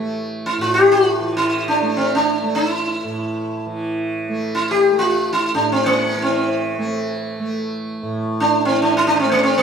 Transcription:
Already playing: A2 E3 A3
0.46 E4
0.58 A2 F4
0.74 G4
0.92 F4
1.20 E3
1.37 E4
1.68 D4
1.82 A3
1.97 C4
2.15 D4
2.42 A3
2.55 E4
3.04 A2
3.66 E3
4.29 A3
4.55 E4
4.71 G4
4.91 A3
4.99 F4
5.33 E4
5.54 A2 D4
5.72 C4
5.86 A#3
6.16 E3
6.22 C4
6.78 A3
7.39 A3
8.03 A2
8.40 D4
8.65 E3 C4
8.82 D4
8.97 E4
9.07 D4
9.16 C4 D4
9.25 A3
9.32 A#3
9.43 C4
9.58 A#3

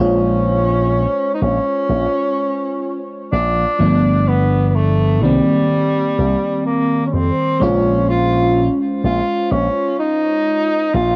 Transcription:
Already playing: G#3
0.00 A#1 C#4 F4 C5 C#5
1.34 D#4
1.42 A#1 C#4
1.89 A#1
3.32 A#1 D4
3.79 G1 F3 A3 B3 D4
4.28 B3
4.68 B3
4.75 A3
5.21 C2 D#3 G3 A#3 C4
6.18 C2
6.66 A#3
7.06 C#4
7.13 F2 C4
7.60 A#1 G#3 C#4 F4 C5
8.10 F4
9.04 A#1 F4
9.51 A#1 C#4
9.99 D#4
10.94 A#1 F4

